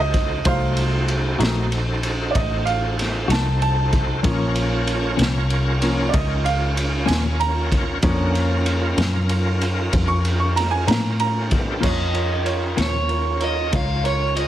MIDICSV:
0, 0, Header, 1, 7, 480
1, 0, Start_track
1, 0, Key_signature, -5, "minor"
1, 0, Tempo, 632244
1, 339, Time_signature, 12, 3, 24, 8
1, 10992, End_track
2, 0, Start_track
2, 0, Title_t, "Overdriven electric guitar"
2, 0, Program_c, 0, 29
2, 9002, Note_on_c, 0, 75, 86
2, 9713, Note_off_c, 0, 75, 0
2, 9716, Note_on_c, 0, 73, 77
2, 10200, Note_off_c, 0, 73, 0
2, 10203, Note_on_c, 0, 75, 87
2, 10437, Note_off_c, 0, 75, 0
2, 10443, Note_on_c, 0, 77, 101
2, 10671, Note_off_c, 0, 77, 0
2, 10674, Note_on_c, 0, 73, 81
2, 10890, Note_off_c, 0, 73, 0
2, 10904, Note_on_c, 0, 75, 86
2, 10992, Note_off_c, 0, 75, 0
2, 10992, End_track
3, 0, Start_track
3, 0, Title_t, "Upright piano"
3, 0, Program_c, 1, 0
3, 0, Note_on_c, 1, 54, 53
3, 0, Note_on_c, 1, 57, 44
3, 0, Note_on_c, 1, 63, 58
3, 0, Note_on_c, 1, 75, 86
3, 312, Note_off_c, 1, 54, 0
3, 313, Note_off_c, 1, 57, 0
3, 316, Note_off_c, 1, 63, 0
3, 338, Note_off_c, 1, 75, 0
3, 348, Note_on_c, 1, 54, 53
3, 351, Note_on_c, 1, 57, 52
3, 352, Note_on_c, 1, 72, 91
3, 359, Note_on_c, 1, 63, 59
3, 361, Note_on_c, 1, 77, 108
3, 794, Note_off_c, 1, 72, 0
3, 815, Note_off_c, 1, 77, 0
3, 1033, Note_off_c, 1, 54, 0
3, 1034, Note_off_c, 1, 57, 0
3, 1038, Note_off_c, 1, 63, 0
3, 1048, Note_on_c, 1, 54, 43
3, 1050, Note_on_c, 1, 57, 46
3, 1057, Note_on_c, 1, 63, 53
3, 1268, Note_off_c, 1, 54, 0
3, 1269, Note_off_c, 1, 57, 0
3, 1273, Note_off_c, 1, 63, 0
3, 1752, Note_on_c, 1, 74, 56
3, 1780, Note_off_c, 1, 74, 0
3, 1790, Note_on_c, 1, 75, 75
3, 2015, Note_on_c, 1, 77, 90
3, 2017, Note_off_c, 1, 75, 0
3, 2481, Note_off_c, 1, 77, 0
3, 2514, Note_on_c, 1, 81, 91
3, 2737, Note_off_c, 1, 81, 0
3, 2749, Note_on_c, 1, 81, 95
3, 3222, Note_on_c, 1, 58, 53
3, 3224, Note_on_c, 1, 53, 59
3, 3228, Note_on_c, 1, 61, 66
3, 3908, Note_off_c, 1, 58, 0
3, 3909, Note_off_c, 1, 53, 0
3, 3911, Note_off_c, 1, 61, 0
3, 4151, Note_off_c, 1, 81, 0
3, 4416, Note_on_c, 1, 53, 49
3, 4424, Note_on_c, 1, 58, 45
3, 4425, Note_on_c, 1, 61, 54
3, 4624, Note_on_c, 1, 74, 60
3, 4631, Note_off_c, 1, 53, 0
3, 4636, Note_off_c, 1, 58, 0
3, 4636, Note_off_c, 1, 61, 0
3, 4653, Note_off_c, 1, 74, 0
3, 4662, Note_on_c, 1, 75, 72
3, 4891, Note_off_c, 1, 75, 0
3, 4897, Note_on_c, 1, 77, 86
3, 5361, Note_off_c, 1, 77, 0
3, 5370, Note_on_c, 1, 80, 89
3, 5604, Note_off_c, 1, 80, 0
3, 5618, Note_on_c, 1, 82, 93
3, 6092, Note_on_c, 1, 53, 56
3, 6093, Note_on_c, 1, 58, 51
3, 6101, Note_on_c, 1, 61, 64
3, 6782, Note_off_c, 1, 53, 0
3, 6783, Note_off_c, 1, 58, 0
3, 6787, Note_off_c, 1, 61, 0
3, 7025, Note_off_c, 1, 82, 0
3, 7652, Note_on_c, 1, 85, 88
3, 7764, Note_off_c, 1, 85, 0
3, 7893, Note_on_c, 1, 85, 73
3, 8005, Note_off_c, 1, 85, 0
3, 8018, Note_on_c, 1, 82, 84
3, 8128, Note_off_c, 1, 82, 0
3, 8130, Note_on_c, 1, 80, 94
3, 8244, Note_off_c, 1, 80, 0
3, 8256, Note_on_c, 1, 82, 89
3, 8488, Note_off_c, 1, 82, 0
3, 8504, Note_on_c, 1, 82, 89
3, 8732, Note_off_c, 1, 82, 0
3, 8965, Note_on_c, 1, 65, 65
3, 8968, Note_on_c, 1, 70, 58
3, 8981, Note_on_c, 1, 73, 77
3, 9150, Note_off_c, 1, 65, 0
3, 9152, Note_off_c, 1, 70, 0
3, 9158, Note_off_c, 1, 73, 0
3, 9210, Note_on_c, 1, 65, 55
3, 9220, Note_on_c, 1, 70, 49
3, 9222, Note_on_c, 1, 73, 56
3, 9393, Note_off_c, 1, 65, 0
3, 9398, Note_off_c, 1, 70, 0
3, 9399, Note_off_c, 1, 73, 0
3, 9444, Note_on_c, 1, 65, 58
3, 9448, Note_on_c, 1, 70, 49
3, 9451, Note_on_c, 1, 73, 63
3, 9630, Note_off_c, 1, 65, 0
3, 9632, Note_off_c, 1, 70, 0
3, 9634, Note_off_c, 1, 73, 0
3, 9682, Note_on_c, 1, 65, 53
3, 9690, Note_on_c, 1, 70, 54
3, 9705, Note_on_c, 1, 72, 58
3, 9869, Note_off_c, 1, 65, 0
3, 9873, Note_off_c, 1, 70, 0
3, 9880, Note_off_c, 1, 72, 0
3, 9934, Note_on_c, 1, 65, 54
3, 9939, Note_on_c, 1, 70, 48
3, 9948, Note_on_c, 1, 73, 60
3, 10115, Note_off_c, 1, 65, 0
3, 10118, Note_off_c, 1, 70, 0
3, 10122, Note_off_c, 1, 73, 0
3, 10173, Note_on_c, 1, 65, 54
3, 10181, Note_on_c, 1, 73, 63
3, 10182, Note_on_c, 1, 70, 53
3, 10355, Note_off_c, 1, 65, 0
3, 10359, Note_off_c, 1, 73, 0
3, 10360, Note_off_c, 1, 70, 0
3, 10410, Note_on_c, 1, 65, 52
3, 10420, Note_on_c, 1, 70, 49
3, 10428, Note_on_c, 1, 73, 54
3, 10594, Note_off_c, 1, 65, 0
3, 10599, Note_off_c, 1, 70, 0
3, 10603, Note_off_c, 1, 73, 0
3, 10655, Note_on_c, 1, 65, 59
3, 10656, Note_on_c, 1, 70, 52
3, 10668, Note_on_c, 1, 73, 62
3, 10837, Note_off_c, 1, 65, 0
3, 10837, Note_off_c, 1, 70, 0
3, 10843, Note_off_c, 1, 73, 0
3, 10888, Note_on_c, 1, 65, 51
3, 10897, Note_on_c, 1, 70, 46
3, 10903, Note_on_c, 1, 73, 52
3, 10992, Note_off_c, 1, 65, 0
3, 10992, Note_off_c, 1, 70, 0
3, 10992, Note_off_c, 1, 73, 0
3, 10992, End_track
4, 0, Start_track
4, 0, Title_t, "Tonewheel organ"
4, 0, Program_c, 2, 16
4, 0, Note_on_c, 2, 63, 72
4, 0, Note_on_c, 2, 66, 71
4, 0, Note_on_c, 2, 69, 65
4, 0, Note_on_c, 2, 72, 71
4, 300, Note_off_c, 2, 66, 0
4, 302, Note_off_c, 2, 63, 0
4, 302, Note_off_c, 2, 72, 0
4, 303, Note_off_c, 2, 69, 0
4, 334, Note_on_c, 2, 63, 74
4, 337, Note_on_c, 2, 66, 76
4, 348, Note_on_c, 2, 72, 73
4, 349, Note_on_c, 2, 69, 70
4, 3184, Note_off_c, 2, 63, 0
4, 3186, Note_off_c, 2, 66, 0
4, 3192, Note_off_c, 2, 69, 0
4, 3192, Note_off_c, 2, 72, 0
4, 3205, Note_on_c, 2, 61, 74
4, 3210, Note_on_c, 2, 65, 74
4, 3213, Note_on_c, 2, 70, 76
4, 3214, Note_on_c, 2, 73, 81
4, 6060, Note_off_c, 2, 61, 0
4, 6062, Note_off_c, 2, 65, 0
4, 6064, Note_off_c, 2, 70, 0
4, 6064, Note_off_c, 2, 73, 0
4, 6107, Note_on_c, 2, 61, 67
4, 6109, Note_on_c, 2, 78, 68
4, 6117, Note_on_c, 2, 50, 71
4, 6117, Note_on_c, 2, 70, 71
4, 6318, Note_off_c, 2, 70, 0
4, 6321, Note_off_c, 2, 61, 0
4, 6327, Note_on_c, 2, 70, 82
4, 6329, Note_on_c, 2, 65, 82
4, 6330, Note_on_c, 2, 61, 83
4, 6341, Note_off_c, 2, 78, 0
4, 6345, Note_off_c, 2, 50, 0
4, 8751, Note_on_c, 2, 55, 55
4, 8768, Note_on_c, 2, 57, 58
4, 8792, Note_on_c, 2, 59, 63
4, 8812, Note_on_c, 2, 60, 59
4, 8830, Note_on_c, 2, 62, 58
4, 8852, Note_on_c, 2, 64, 58
4, 8869, Note_off_c, 2, 65, 0
4, 8878, Note_on_c, 2, 65, 57
4, 8895, Note_on_c, 2, 67, 57
4, 8911, Note_on_c, 2, 69, 54
4, 8921, Note_off_c, 2, 55, 0
4, 8929, Note_off_c, 2, 57, 0
4, 8941, Note_off_c, 2, 59, 0
4, 8944, Note_on_c, 2, 71, 58
4, 8945, Note_off_c, 2, 70, 0
4, 8949, Note_off_c, 2, 61, 0
4, 8951, Note_off_c, 2, 60, 0
4, 8957, Note_on_c, 2, 72, 61
4, 8960, Note_off_c, 2, 62, 0
4, 8971, Note_off_c, 2, 64, 0
4, 8971, Note_off_c, 2, 65, 0
4, 8980, Note_on_c, 2, 65, 64
4, 8981, Note_on_c, 2, 73, 59
4, 8988, Note_on_c, 2, 70, 63
4, 8989, Note_on_c, 2, 61, 69
4, 8992, Note_off_c, 2, 67, 0
4, 9000, Note_off_c, 2, 69, 0
4, 9017, Note_off_c, 2, 71, 0
4, 9023, Note_off_c, 2, 72, 0
4, 10992, Note_off_c, 2, 61, 0
4, 10992, Note_off_c, 2, 65, 0
4, 10992, Note_off_c, 2, 70, 0
4, 10992, Note_off_c, 2, 73, 0
4, 10992, End_track
5, 0, Start_track
5, 0, Title_t, "Clean electric guitar"
5, 0, Program_c, 3, 27
5, 1053, Note_on_c, 3, 66, 72
5, 1059, Note_on_c, 3, 63, 74
5, 1069, Note_on_c, 3, 53, 70
5, 1071, Note_on_c, 3, 57, 68
5, 1200, Note_off_c, 3, 66, 0
5, 1203, Note_off_c, 3, 63, 0
5, 1208, Note_off_c, 3, 53, 0
5, 1208, Note_off_c, 3, 57, 0
5, 2490, Note_on_c, 3, 66, 79
5, 2501, Note_on_c, 3, 63, 71
5, 2504, Note_on_c, 3, 57, 69
5, 2510, Note_on_c, 3, 53, 66
5, 2637, Note_off_c, 3, 66, 0
5, 2642, Note_off_c, 3, 63, 0
5, 2644, Note_off_c, 3, 57, 0
5, 2647, Note_off_c, 3, 53, 0
5, 3212, Note_on_c, 3, 53, 79
5, 3213, Note_on_c, 3, 46, 81
5, 3221, Note_on_c, 3, 58, 78
5, 3228, Note_on_c, 3, 61, 86
5, 3358, Note_off_c, 3, 46, 0
5, 3358, Note_off_c, 3, 53, 0
5, 3362, Note_off_c, 3, 58, 0
5, 3366, Note_off_c, 3, 61, 0
5, 3925, Note_on_c, 3, 61, 88
5, 3930, Note_on_c, 3, 58, 72
5, 3939, Note_on_c, 3, 53, 78
5, 3940, Note_on_c, 3, 46, 75
5, 4074, Note_off_c, 3, 61, 0
5, 4076, Note_off_c, 3, 58, 0
5, 4081, Note_off_c, 3, 46, 0
5, 4081, Note_off_c, 3, 53, 0
5, 5358, Note_on_c, 3, 61, 82
5, 5361, Note_on_c, 3, 58, 77
5, 5369, Note_on_c, 3, 53, 76
5, 5377, Note_on_c, 3, 46, 68
5, 5510, Note_off_c, 3, 61, 0
5, 5511, Note_off_c, 3, 58, 0
5, 5516, Note_off_c, 3, 53, 0
5, 5519, Note_off_c, 3, 46, 0
5, 6817, Note_on_c, 3, 61, 92
5, 6819, Note_on_c, 3, 58, 81
5, 6827, Note_on_c, 3, 53, 71
5, 6828, Note_on_c, 3, 46, 68
5, 6960, Note_off_c, 3, 58, 0
5, 6960, Note_off_c, 3, 61, 0
5, 6964, Note_off_c, 3, 53, 0
5, 6965, Note_off_c, 3, 46, 0
5, 8255, Note_on_c, 3, 61, 81
5, 8256, Note_on_c, 3, 58, 81
5, 8261, Note_on_c, 3, 53, 74
5, 8271, Note_on_c, 3, 46, 64
5, 8398, Note_off_c, 3, 61, 0
5, 8399, Note_off_c, 3, 58, 0
5, 8402, Note_off_c, 3, 53, 0
5, 8407, Note_off_c, 3, 46, 0
5, 8962, Note_on_c, 3, 46, 68
5, 8967, Note_on_c, 3, 53, 61
5, 8975, Note_on_c, 3, 58, 68
5, 8982, Note_on_c, 3, 61, 69
5, 9113, Note_off_c, 3, 46, 0
5, 9115, Note_off_c, 3, 53, 0
5, 9119, Note_off_c, 3, 58, 0
5, 9122, Note_off_c, 3, 61, 0
5, 9695, Note_on_c, 3, 58, 62
5, 9696, Note_on_c, 3, 61, 61
5, 9706, Note_on_c, 3, 46, 55
5, 9707, Note_on_c, 3, 53, 53
5, 9840, Note_off_c, 3, 58, 0
5, 9840, Note_off_c, 3, 61, 0
5, 9845, Note_off_c, 3, 46, 0
5, 9846, Note_off_c, 3, 53, 0
5, 10992, End_track
6, 0, Start_track
6, 0, Title_t, "Fingered electric bass"
6, 0, Program_c, 4, 33
6, 0, Note_on_c, 4, 37, 98
6, 320, Note_off_c, 4, 37, 0
6, 344, Note_on_c, 4, 36, 91
6, 1039, Note_off_c, 4, 36, 0
6, 1057, Note_on_c, 4, 34, 85
6, 1755, Note_off_c, 4, 34, 0
6, 1787, Note_on_c, 4, 33, 92
6, 2480, Note_off_c, 4, 33, 0
6, 2497, Note_on_c, 4, 36, 106
6, 3194, Note_off_c, 4, 36, 0
6, 3225, Note_on_c, 4, 34, 97
6, 3918, Note_off_c, 4, 34, 0
6, 3940, Note_on_c, 4, 36, 89
6, 4635, Note_off_c, 4, 36, 0
6, 4662, Note_on_c, 4, 37, 94
6, 5356, Note_off_c, 4, 37, 0
6, 5378, Note_on_c, 4, 39, 108
6, 6074, Note_off_c, 4, 39, 0
6, 6093, Note_on_c, 4, 41, 101
6, 6791, Note_off_c, 4, 41, 0
6, 6813, Note_on_c, 4, 42, 90
6, 7512, Note_off_c, 4, 42, 0
6, 7537, Note_on_c, 4, 41, 95
6, 8234, Note_off_c, 4, 41, 0
6, 8258, Note_on_c, 4, 45, 102
6, 8955, Note_off_c, 4, 45, 0
6, 8982, Note_on_c, 4, 41, 76
6, 9678, Note_off_c, 4, 41, 0
6, 9703, Note_on_c, 4, 39, 79
6, 10399, Note_off_c, 4, 39, 0
6, 10423, Note_on_c, 4, 37, 84
6, 10992, Note_off_c, 4, 37, 0
6, 10992, End_track
7, 0, Start_track
7, 0, Title_t, "Drums"
7, 105, Note_on_c, 9, 36, 76
7, 105, Note_on_c, 9, 51, 62
7, 180, Note_off_c, 9, 51, 0
7, 181, Note_off_c, 9, 36, 0
7, 341, Note_on_c, 9, 51, 95
7, 344, Note_on_c, 9, 36, 121
7, 417, Note_off_c, 9, 51, 0
7, 420, Note_off_c, 9, 36, 0
7, 581, Note_on_c, 9, 51, 72
7, 657, Note_off_c, 9, 51, 0
7, 822, Note_on_c, 9, 51, 64
7, 898, Note_off_c, 9, 51, 0
7, 1065, Note_on_c, 9, 51, 78
7, 1087, Note_on_c, 9, 38, 118
7, 1141, Note_off_c, 9, 51, 0
7, 1163, Note_off_c, 9, 38, 0
7, 1305, Note_on_c, 9, 51, 69
7, 1381, Note_off_c, 9, 51, 0
7, 1542, Note_on_c, 9, 51, 63
7, 1618, Note_off_c, 9, 51, 0
7, 1784, Note_on_c, 9, 36, 86
7, 1785, Note_on_c, 9, 51, 83
7, 1860, Note_off_c, 9, 36, 0
7, 1860, Note_off_c, 9, 51, 0
7, 2024, Note_on_c, 9, 51, 63
7, 2100, Note_off_c, 9, 51, 0
7, 2270, Note_on_c, 9, 51, 68
7, 2291, Note_on_c, 9, 38, 37
7, 2346, Note_off_c, 9, 51, 0
7, 2367, Note_off_c, 9, 38, 0
7, 2506, Note_on_c, 9, 51, 86
7, 2528, Note_on_c, 9, 38, 116
7, 2582, Note_off_c, 9, 51, 0
7, 2603, Note_off_c, 9, 38, 0
7, 2747, Note_on_c, 9, 51, 61
7, 2823, Note_off_c, 9, 51, 0
7, 2980, Note_on_c, 9, 51, 59
7, 2982, Note_on_c, 9, 36, 76
7, 3056, Note_off_c, 9, 51, 0
7, 3058, Note_off_c, 9, 36, 0
7, 3219, Note_on_c, 9, 51, 95
7, 3222, Note_on_c, 9, 36, 122
7, 3295, Note_off_c, 9, 51, 0
7, 3298, Note_off_c, 9, 36, 0
7, 3458, Note_on_c, 9, 51, 71
7, 3534, Note_off_c, 9, 51, 0
7, 3700, Note_on_c, 9, 51, 76
7, 3776, Note_off_c, 9, 51, 0
7, 3939, Note_on_c, 9, 51, 89
7, 3960, Note_on_c, 9, 38, 107
7, 4015, Note_off_c, 9, 51, 0
7, 4036, Note_off_c, 9, 38, 0
7, 4178, Note_on_c, 9, 51, 69
7, 4253, Note_off_c, 9, 51, 0
7, 4416, Note_on_c, 9, 51, 71
7, 4492, Note_off_c, 9, 51, 0
7, 4658, Note_on_c, 9, 51, 91
7, 4659, Note_on_c, 9, 36, 89
7, 4734, Note_off_c, 9, 51, 0
7, 4735, Note_off_c, 9, 36, 0
7, 4902, Note_on_c, 9, 51, 69
7, 4978, Note_off_c, 9, 51, 0
7, 5141, Note_on_c, 9, 51, 81
7, 5217, Note_off_c, 9, 51, 0
7, 5377, Note_on_c, 9, 51, 89
7, 5399, Note_on_c, 9, 38, 123
7, 5453, Note_off_c, 9, 51, 0
7, 5474, Note_off_c, 9, 38, 0
7, 5622, Note_on_c, 9, 51, 70
7, 5698, Note_off_c, 9, 51, 0
7, 5858, Note_on_c, 9, 36, 73
7, 5861, Note_on_c, 9, 51, 62
7, 5934, Note_off_c, 9, 36, 0
7, 5937, Note_off_c, 9, 51, 0
7, 6092, Note_on_c, 9, 51, 86
7, 6096, Note_on_c, 9, 36, 126
7, 6168, Note_off_c, 9, 51, 0
7, 6172, Note_off_c, 9, 36, 0
7, 6341, Note_on_c, 9, 51, 62
7, 6417, Note_off_c, 9, 51, 0
7, 6574, Note_on_c, 9, 51, 62
7, 6650, Note_off_c, 9, 51, 0
7, 6815, Note_on_c, 9, 51, 72
7, 6837, Note_on_c, 9, 38, 117
7, 6891, Note_off_c, 9, 51, 0
7, 6913, Note_off_c, 9, 38, 0
7, 7055, Note_on_c, 9, 51, 72
7, 7131, Note_off_c, 9, 51, 0
7, 7299, Note_on_c, 9, 51, 65
7, 7375, Note_off_c, 9, 51, 0
7, 7537, Note_on_c, 9, 51, 83
7, 7539, Note_on_c, 9, 36, 98
7, 7613, Note_off_c, 9, 51, 0
7, 7615, Note_off_c, 9, 36, 0
7, 7780, Note_on_c, 9, 51, 65
7, 7856, Note_off_c, 9, 51, 0
7, 8026, Note_on_c, 9, 51, 83
7, 8047, Note_on_c, 9, 38, 40
7, 8102, Note_off_c, 9, 51, 0
7, 8123, Note_off_c, 9, 38, 0
7, 8260, Note_on_c, 9, 51, 98
7, 8282, Note_on_c, 9, 38, 117
7, 8336, Note_off_c, 9, 51, 0
7, 8358, Note_off_c, 9, 38, 0
7, 8500, Note_on_c, 9, 51, 76
7, 8576, Note_off_c, 9, 51, 0
7, 8738, Note_on_c, 9, 51, 64
7, 8742, Note_on_c, 9, 36, 77
7, 8814, Note_off_c, 9, 51, 0
7, 8818, Note_off_c, 9, 36, 0
7, 8983, Note_on_c, 9, 36, 109
7, 8983, Note_on_c, 9, 49, 95
7, 9059, Note_off_c, 9, 36, 0
7, 9059, Note_off_c, 9, 49, 0
7, 9221, Note_on_c, 9, 51, 59
7, 9297, Note_off_c, 9, 51, 0
7, 9458, Note_on_c, 9, 51, 55
7, 9534, Note_off_c, 9, 51, 0
7, 9700, Note_on_c, 9, 51, 77
7, 9722, Note_on_c, 9, 38, 103
7, 9776, Note_off_c, 9, 51, 0
7, 9797, Note_off_c, 9, 38, 0
7, 9938, Note_on_c, 9, 51, 54
7, 10014, Note_off_c, 9, 51, 0
7, 10177, Note_on_c, 9, 51, 60
7, 10253, Note_off_c, 9, 51, 0
7, 10421, Note_on_c, 9, 51, 72
7, 10423, Note_on_c, 9, 36, 85
7, 10497, Note_off_c, 9, 51, 0
7, 10499, Note_off_c, 9, 36, 0
7, 10665, Note_on_c, 9, 51, 60
7, 10741, Note_off_c, 9, 51, 0
7, 10906, Note_on_c, 9, 51, 67
7, 10982, Note_off_c, 9, 51, 0
7, 10992, End_track
0, 0, End_of_file